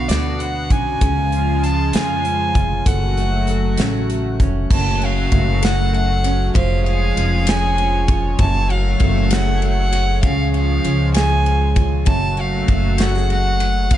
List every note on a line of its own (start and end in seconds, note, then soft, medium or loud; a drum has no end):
0.00 1.01 B2 medium
0.00 1.00 D3 medium
0.00 1.00 B3 medium
0.00 0.38 D4 soft
0.00 1.00 F#4 medium
0.00 1.01 F#4 medium
0.00 0.10 F5 medium
0.08 0.67 D2 medium
0.08 0.41 D5 medium
0.08 snare loud
0.08 closed hi-hat medium
0.39 1.07 D4 medium
0.39 0.73 F#5 medium
0.39 closed hi-hat soft
0.70 1.00 B1 medium
0.70 1.32 C#4 soft
0.70 1.65 G#5 medium
0.70 kick medium
0.70 closed hi-hat medium
1.01 1.90 C#2 medium
1.01 2.86 C#3 medium
1.01 4.67 C#3 medium
1.01 2.85 F3 medium
1.01 2.85 G#3 medium
1.01 2.85 F4 loud
1.01 1.63 G#4 medium
1.01 kick medium
1.01 closed hi-hat medium
1.32 2.23 C#4 medium
1.32 closed hi-hat soft
1.63 1.97 A5 medium
1.63 closed hi-hat soft
1.93 2.51 F2 medium
1.93 2.53 F4 medium
1.93 2.89 G#5 medium
1.93 snare loud
1.93 closed hi-hat medium
2.24 3.17 C#4 medium
2.24 closed hi-hat soft
2.54 2.85 F1 medium
2.54 2.92 F4 medium
2.54 kick medium
2.54 closed hi-hat soft
2.85 3.74 F#1 medium
2.85 4.69 F#3 medium
2.85 4.68 A3 medium
2.85 4.68 F#4 medium
2.85 3.48 A4 medium
2.85 3.79 F#5 medium
2.85 kick loud
2.85 closed hi-hat medium
3.17 4.10 A3 soft
3.17 closed hi-hat soft
3.47 4.77 A4 medium
3.47 closed hi-hat soft
3.77 4.36 A1 medium
3.77 4.40 C#4 medium
3.77 snare loud
3.77 closed hi-hat medium
4.10 4.77 A3 medium
4.10 closed hi-hat soft
4.40 4.69 F1 medium
4.40 5.00 C#4 medium
4.40 kick medium
4.40 closed hi-hat medium
4.71 5.28 F#1 medium
4.71 6.55 F#2 medium
4.71 6.54 C#3 medium
4.71 6.53 F#3 medium
4.71 6.54 A3 medium
4.71 6.54 F#4 medium
4.71 5.07 A5 loud
4.71 kick loud
4.71 crash medium
5.00 6.23 C#4 medium
5.00 ride soft
5.05 5.66 F5 medium
5.32 6.51 F#1 medium
5.32 5.92 A3 medium
5.32 kick medium
5.32 ride soft
5.62 6.61 A4 medium
5.62 5.95 F#5 loud
5.62 snare loud
5.62 ride medium
5.93 6.61 A3 medium
5.93 6.52 F#5 medium
5.93 ride soft
6.23 6.85 C#4 medium
6.23 ride medium
6.54 7.13 F1 loud
6.54 8.39 F3 medium
6.54 8.38 F3 medium
6.54 8.37 G#3 medium
6.54 8.37 G#4 medium
6.54 13.98 C#5 medium
6.54 6.85 F5 medium
6.54 kick loud
6.54 ride medium
6.86 8.08 F4 soft
6.86 7.51 F5 medium
6.86 ride soft
7.16 8.35 F1 medium
7.16 7.78 C#4 medium
7.16 ride soft
7.47 8.71 G#4 medium
7.47 8.17 G#5 loud
7.47 snare loud
7.47 ride medium
7.78 9.00 C#4 medium
7.78 ride soft
8.08 8.46 F4 medium
8.08 kick medium
8.08 ride medium
8.39 8.97 F#1 loud
8.39 10.23 F#2 medium
8.39 10.21 F#3 medium
8.39 10.21 A3 medium
8.39 8.73 A5 loud
8.39 kick loud
8.39 ride medium
8.68 9.90 F#4 medium
8.68 9.35 F5 medium
8.68 ride soft
9.00 10.19 F#1 loud
9.00 9.61 A3 medium
9.00 kick medium
9.00 ride medium
9.31 11.14 G#4 medium
9.31 9.63 F#5 medium
9.31 snare loud
9.31 ride medium
9.62 10.30 A3 medium
9.62 10.21 F#5 loud
9.62 ride soft
9.92 10.29 F#4 medium
9.92 ride medium
10.22 10.81 C#2 medium
10.22 12.08 C#3 medium
10.22 12.05 F3 medium
10.22 12.05 G#3 medium
10.22 10.53 F5 medium
10.22 kick loud
10.22 ride medium
10.54 11.75 F4 medium
10.54 11.13 F5 medium
10.54 ride soft
10.84 12.03 C#2 medium
10.84 11.44 C#4 soft
10.84 ride soft
11.14 12.13 G#4 medium
11.14 11.81 G#5 loud
11.14 snare loud
11.14 ride medium
11.44 12.68 C#4 medium
11.44 ride soft
11.76 12.13 F4 medium
11.76 kick medium
11.76 ride medium
12.05 12.65 F#1 medium
12.05 13.91 F#2 medium
12.05 13.89 F#3 medium
12.05 13.90 A3 medium
12.05 13.90 F#4 loud
12.05 12.42 A5 loud
12.05 kick loud
12.05 ride medium
12.36 12.99 F#4 medium
12.36 13.03 F5 medium
12.36 ride soft
12.68 13.87 F#1 medium
12.68 13.29 A3 medium
12.68 kick medium
12.68 ride medium
12.98 13.15 F#4 medium
12.98 13.31 F#5 medium
12.98 snare loud
12.98 ride medium
13.15 13.98 G#4 medium
13.30 13.98 A3 soft
13.30 13.95 F#5 loud
13.30 ride soft
13.60 13.98 F#4 medium
13.60 ride medium
13.91 13.98 B1 medium
13.91 13.98 B2 medium
13.91 13.98 D3 medium
13.91 13.98 B3 medium
13.91 13.98 F#4 medium
13.91 13.98 F5 medium
13.91 kick loud
13.91 ride medium